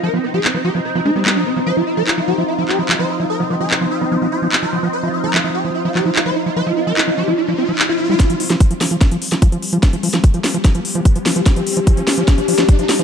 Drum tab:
HH |----------------|----------------|----------------|----------------|
CP |----x-------x---|----x-----x-x---|----x-------x---|----x-----x-x---|
SD |----------------|----------------|----------------|----------------|
BD |----------------|----------------|----------------|----------------|

HH |----------------|xxoxxxoxxxoxxxox|xxoxxxoxxxoxxxox|xxoxxxoxxxoxxxox|
CP |----x-------x---|----------------|----------------|----------------|
SD |----------------|o--o--o-o--o----|o--o--o-o-----o-|o-----o-o--o--o-|
BD |----------------|o---o---o---o---|o---o---o---o---|o---o---o---o---|